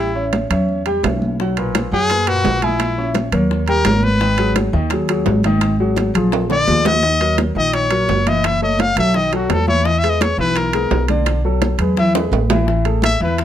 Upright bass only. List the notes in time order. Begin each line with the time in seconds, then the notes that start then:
Already playing: A1
0.50 E2
1.03 B1
1.92 F#2
2.44 A#1
3.32 D#2
3.85 G#1
4.73 D#2
5.26 G#1
6.14 A#1
6.67 D#2
7.55 A#1
8.09 F#1
8.96 B1
9.50 E2
10.38 B1
10.91 B1
11.78 E2
12.31 A1
13.20 E2